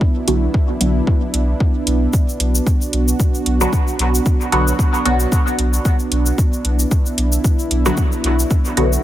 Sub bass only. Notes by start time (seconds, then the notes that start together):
0.28 B1
0.81 B1
1.34 B1
1.87 B1
2.40 B1
2.93 B1
3.46 B1
3.99 B1
4.52 B1
5.06 B1
5.59 B1
6.12 B1
6.65 B1
7.18 B1
7.71 B1
8.24 B1
8.77 B1